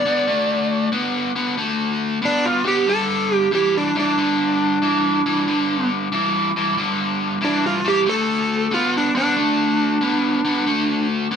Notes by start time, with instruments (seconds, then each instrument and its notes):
Already playing: electric slide guitar D5
0.05 overdriven electric guitar D3 B3
0.27 overdriven electric guitar D3 A3
0.92 overdriven electric guitar D3 B3
1.36 overdriven electric guitar D3 B3
1.57 overdriven electric guitar D3 A3
2.22 overdriven electric guitar D3 B3, electric slide guitar D4
2.46 electric slide guitar F4
2.64 overdriven electric guitar D3 B3, electric slide guitar G4
2.86 overdriven electric guitar G2 D3, electric slide guitar A4
3.34 electric slide guitar G4
3.51 overdriven electric guitar G2 E3, electric slide guitar G4
3.77 electric slide guitar D4
3.95 overdriven electric guitar G2 E3
4.00 electric slide guitar D4
4.18 overdriven electric guitar G2 D3
4.82 overdriven electric guitar G2 E3
5.26 overdriven electric guitar G2 E3
5.47 overdriven electric guitar G2 D3
6.12 overdriven electric guitar G2 E3
6.56 overdriven electric guitar G2 E3
6.77 overdriven electric guitar G2 D3
7.41 overdriven electric guitar G2 E3, electric slide guitar D4
7.66 electric slide guitar F4
7.85 overdriven electric guitar G2 E3, electric slide guitar G4
8.06 overdriven electric guitar D3 A3, electric slide guitar A4
8.71 overdriven electric guitar D3 B3, electric slide guitar F4
8.97 electric slide guitar D4
9.15 overdriven electric guitar D3 B3, electric slide guitar D4
9.36 overdriven electric guitar D3 A3
10.01 overdriven electric guitar D3 B3
10.45 overdriven electric guitar D3 B3
10.66 overdriven electric guitar D3 A3
11.31 overdriven electric guitar D3 B3